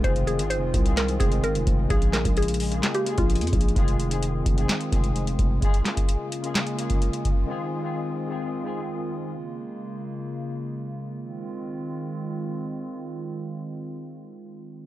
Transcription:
Already playing: G#3 F4
0.02 F1 D#3 G#3 C4 F4 C5, kick, closed hi-hat
0.07 G#4
0.16 closed hi-hat
0.27 G#4, closed hi-hat
0.37 G#1 D#3 G#3 C4 F4, closed hi-hat
0.42 G#4
0.50 C5, closed hi-hat
0.56 F1
0.74 C2, kick, closed hi-hat
0.83 D#3 G#3 C4 F4, closed hi-hat
0.88 G#4
0.97 A#4, snare, clap, closed hi-hat
1.08 closed hi-hat
1.18 F1 D#3 G#3 C4 F4 G#4, kick, closed hi-hat
1.23 G#4
1.32 closed hi-hat
1.44 G#1 A#4, closed hi-hat
1.55 F1, closed hi-hat
1.67 F1, kick, closed hi-hat
1.87 A#1 C#3 G#3 A#3 F4 G#4, kick, closed hi-hat
1.93 G#4
2.02 closed hi-hat
2.13 A#4, snare, clap, closed hi-hat
2.25 A#1, kick, closed hi-hat
2.37 G#4, closed hi-hat
2.42 closed hi-hat
2.48 closed hi-hat
2.54 closed hi-hat
2.60 open hi-hat
2.69 C#3 G#3 A#3 F4, closed hi-hat
2.74 G#4
2.83 snare, clap, closed hi-hat
2.94 G4, closed hi-hat
3.04 C#3 G#3 A#3 F4, closed hi-hat
3.09 G#4
3.18 A#1 F4, kick, closed hi-hat
3.30 closed hi-hat
3.35 closed hi-hat
3.41 F2, closed hi-hat
3.47 closed hi-hat
3.53 A#1, kick, closed hi-hat
3.61 closed hi-hat
3.68 closed hi-hat
3.74 F1 D#3 G#3 C4 F4, kick, closed hi-hat
3.79 G#4
3.88 closed hi-hat
4.00 closed hi-hat
4.08 D#3 G#3 C4 F4, closed hi-hat
4.13 G#4
4.23 closed hi-hat
4.46 F1, kick, closed hi-hat
4.55 D#3 G#3 C4 F4, closed hi-hat
4.60 G#4
4.69 snare, clap, closed hi-hat
4.81 closed hi-hat
4.90 F1 D#3 G#3 C4 F4, kick, closed hi-hat
4.95 G#4
5.04 closed hi-hat
5.16 closed hi-hat
5.27 closed hi-hat
5.39 F1, kick, closed hi-hat
5.60 C#3 G#3 A#3 F4, kick, closed hi-hat
5.65 G#4
5.74 closed hi-hat
5.85 snare, clap, closed hi-hat
5.97 kick, closed hi-hat
6.09 closed hi-hat
6.32 closed hi-hat
6.41 C#3 G#3 A#3 F4, closed hi-hat
6.46 G#4
6.55 snare, clap, closed hi-hat
6.67 closed hi-hat
6.76 C#3 G#3 A#3 F4, closed hi-hat
6.81 G#4
6.90 kick, closed hi-hat
7.02 closed hi-hat
7.13 closed hi-hat
7.25 kick, closed hi-hat
7.46 D#3 G#3 C4 F4
7.51 G#4
7.81 D#3 G#3 C4 F4
7.86 G#4
8.27 D#3 G#3 C4 F4
8.32 G#4
8.62 D#3 G#3 C4 F4
8.67 G#4
9.34 C#3 A#3
11.20 D#3 G#3 C4 F4

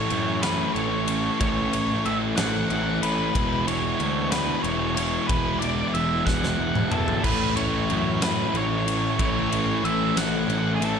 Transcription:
Already playing: A2 E3 A3 C#4 E4 A4 C#5
0.10 F#2 E3 A3 C#4 E4, ride
0.42 A2 E3 A3 C#4 E4 A4 B4, snare, ride
0.74 A1 A3 C#4 E4 C#5, ride
0.78 A4
1.08 A3 C#4 E4 A4, ride
1.40 A1 A2 E3 A3 C#4 E4 A4 C#5, kick, ride
1.73 A3 C#4 E4 A4, ride
2.05 A1 E3 A3 C#4 E4 E5, ride
2.36 A1 E3 A3 C#4 E4 A4 F#5, snare, ride
2.40 A2
2.70 A1 A3 C#4 E4 A4, ride
3.02 A1 A3 C#4 E4 A4 B4, ride
3.34 E1 E3 G#3 B3 E4, kick, ride
3.66 E1 G#3 B3 E4 C#5, ride
3.99 D2 E3 G#3 B3 E4, ride
4.30 E3 G#3 B3 E4 B4, snare, ride
4.63 E1 E3 G#3 B3 E4 C#5, ride
4.95 G#3 B3 E4 C#5, ride
5.27 E1 E3 G#3 B3 E4 B4, kick, ride
5.59 G#3 B3 E4 D5, ride
5.94 E1 E3 G#3 B3 E4 E5, ride
6.25 E1 E3 G#3 B3 E4 F#5, kick, snare
6.43 snare
6.58 E1 E3 G#3 B3 E4
6.75 mid tom
6.90 E1 G#3 B3 E4 A4, mid tom
7.08 floor tom
7.22 A1 A2 E3 A3 C#4 E4 B4, kick, crash
7.55 A1 A3 C#4 E4 C#5, ride
7.90 F#2 E3 A3 C#4 E4, ride
8.21 A2 E3 A3 C#4 E4 B4, snare, ride
8.53 A1 E3 A3 C#4 E4, ride
8.57 C#5
8.85 A3 C#4 E4, ride
9.18 A1 A2 E3 A3 C#4 E4 C#5, kick, ride
9.50 A3 C#4 E4, ride
9.83 A1 E3 A3 C#4 E4 E5, ride
10.16 A1 A2 E3 A3 C#4 E4 F#5, snare, ride
10.48 A1 E3 A3 C#4 E4, ride
10.75 G#4
10.80 A1 A3 C#4 E4, ride
10.85 A4

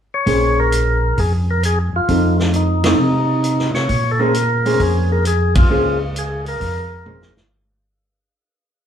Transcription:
0.14 C#5
0.26 A#1 A#3 C#4 G#4 C5, kick, open hi-hat
0.60 A#4
0.72 closed hi-hat
1.18 F2 G#4, kick, open hi-hat
1.51 A#4
1.63 G#4, closed hi-hat
1.93 F2 F4
2.08 F2 F3 C4 D#4 A4, kick, open hi-hat
2.39 snare
2.53 D#4, closed hi-hat
2.84 F3 C4 D#4 A4, snare, ride
2.98 C3
3.44 closed hi-hat
3.59 snare
3.74 C3 C#5, snare
3.89 A#2, kick, open hi-hat
4.11 A4
4.20 A#3 C#4 G#4 A#4 C5
4.34 closed hi-hat
4.66 A#3 C#4 G#4 C5, open hi-hat
4.80 F2 G#4, kick, open hi-hat
5.12 A#4
5.25 G#4, closed hi-hat
5.55 F4, kick, ride
5.69 C#2 A#3 C#4 G#4 C5
6.16 G#4, closed hi-hat
6.46 A#4, open hi-hat
6.60 F2, kick, open hi-hat
7.06 A#3 C#4 G#4 C5, mid tom
7.22 snare
7.36 F2, snare

